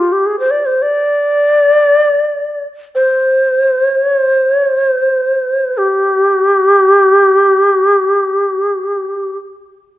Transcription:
Already playing: F4
0.12 G4
0.26 G#4
0.39 C5
0.51 D5
0.66 C5
0.82 D5
2.95 C5
3.94 C#5
4.21 C5
4.50 C#5
4.77 C5
5.77 G4

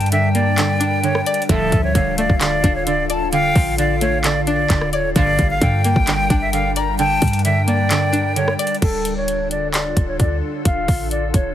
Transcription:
Already playing: G2 D3 G3 D4 A#4 D5 G5
0.01 closed hi-hat
0.06 closed hi-hat
0.12 D3 E5 G5, closed hi-hat
0.35 A#3 D5, closed hi-hat
0.58 D3, clap, closed hi-hat
0.80 D4, closed hi-hat
1.03 D3 C#5, closed hi-hat
1.15 cross-stick
1.26 D5, closed hi-hat
1.34 closed hi-hat
1.42 closed hi-hat
1.49 D1 D2 A2 D3 F3 F4 A4 E5, kick, closed hi-hat
1.72 D2 F3, kick, closed hi-hat
1.84 C#5
1.95 D1 D3 F5, kick, closed hi-hat
2.18 A3 D5, closed hi-hat
2.30 D1, kick
2.41 D3 D5, clap, closed hi-hat
2.64 D1 D4, kick, closed hi-hat
2.75 C#5
2.87 D3 D5, closed hi-hat
3.10 D5 A5, closed hi-hat
3.32 D3 F5 G5, closed hi-hat
3.55 A1 F3, kick, open hi-hat
3.78 D3 D5 F5, closed hi-hat
4.01 A3 C#5, closed hi-hat
4.24 D3 D5, clap, closed hi-hat
4.47 D4 D5, closed hi-hat
4.70 D1 D3, kick, clap, closed hi-hat
4.81 cross-stick
4.93 C#5 D5, closed hi-hat
5.16 G1 A#1 G2 D3 G3 D4 A#4 D5 F5 G5, kick, closed hi-hat
5.38 G1 G3, kick, closed hi-hat
5.50 F5
5.61 G2 D3 G5, kick, closed hi-hat
5.84 A#3 G5, closed hi-hat
5.96 G1, kick
6.07 D3 G5, clap, closed hi-hat
6.30 G1 D4, kick, closed hi-hat
6.42 E5
6.53 D3 F5, closed hi-hat
6.76 D5 A#5, closed hi-hat
6.99 D3 G5 A5, closed hi-hat
7.22 G2 G3, kick, closed hi-hat, open hi-hat
7.28 closed hi-hat
7.33 closed hi-hat
7.39 closed hi-hat
7.44 D3 E5 G5, closed hi-hat
7.68 A#3 D5, closed hi-hat
7.91 D3, clap, closed hi-hat
8.13 D4, closed hi-hat
8.36 D3 C#5, closed hi-hat
8.48 cross-stick
8.59 D5, closed hi-hat
8.67 closed hi-hat
8.75 closed hi-hat
8.82 D1 D3 D4 F4 A4, kick, closed hi-hat, crash
9.05 closed hi-hat
9.17 C#5
9.28 closed hi-hat
9.51 D5, closed hi-hat
9.74 D5, clap, closed hi-hat
9.97 D1, kick, closed hi-hat
10.08 C#5
10.20 D2 D5, kick, closed hi-hat
10.65 D1 F5, kick, closed hi-hat
10.88 A1, kick, open hi-hat
11.11 D5, closed hi-hat
11.34 D1 C#5, kick, closed hi-hat

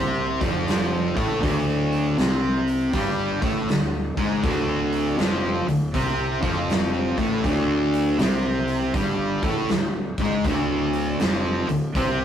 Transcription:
Already playing: C2 C3 C4
0.41 F1 F2 F3, kick, open hi-hat
0.68 snare, open hi-hat
1.16 A1 A2 A3, kick, open hi-hat
1.42 D1 D2 D3, kick, open hi-hat
1.92 open hi-hat
2.17 C2 C3 C4, snare, open hi-hat
2.67 open hi-hat
2.93 G1 G2 G3, kick, open hi-hat
3.42 A1 A2 A3, kick, open hi-hat
3.67 D1 D2, snare, open hi-hat
4.17 G#1 G#2 G#3, kick, open hi-hat
4.43 D1 D2 D3, kick, open hi-hat
4.92 open hi-hat
5.18 F1 F2 F3, snare, open hi-hat
5.67 D1 D2, open hi-hat
5.94 C2 C3 C4, kick, open hi-hat
6.41 F1 F2 F3, kick, open hi-hat
6.70 snare, open hi-hat
7.17 A1 A2 A3, kick, open hi-hat
7.44 D1 D2 D3, kick, open hi-hat
7.93 open hi-hat
8.18 C2 C3 C4, snare, open hi-hat
8.68 open hi-hat
8.94 G1 G2 G3, kick, open hi-hat
9.43 A1 A2 A3, kick, open hi-hat
9.69 D1 D2, snare, open hi-hat
10.18 G#1 G#2 G#3, kick, open hi-hat
10.44 D1 D2 D3, kick, open hi-hat
10.93 open hi-hat
11.20 F1 F2 F3, snare, open hi-hat
11.68 D1 D2, open hi-hat
11.95 C2 C3 C4, kick, open hi-hat

